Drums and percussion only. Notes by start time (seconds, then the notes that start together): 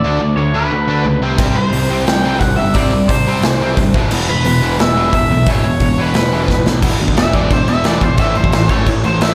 1.38 kick, crash
1.73 open hi-hat
2.07 snare, open hi-hat
2.40 kick, open hi-hat
2.74 kick, open hi-hat
3.09 kick, open hi-hat
3.42 snare, open hi-hat
3.77 kick, open hi-hat
3.94 kick
4.11 crash
4.45 open hi-hat
4.79 snare, open hi-hat
5.13 kick, open hi-hat
5.46 kick, open hi-hat
5.80 kick, open hi-hat
6.14 snare, open hi-hat
6.48 kick, snare
6.66 snare
6.82 kick, crash
7.00 crash
7.08 kick
7.17 snare, crash
7.33 kick, crash
7.51 kick, crash
7.68 crash
7.84 snare, crash
8.01 kick, crash
8.17 kick, crash
8.35 crash
8.44 kick
8.52 snare, crash
8.69 kick, crash
8.87 kick, crash
9.04 crash
9.21 snare, crash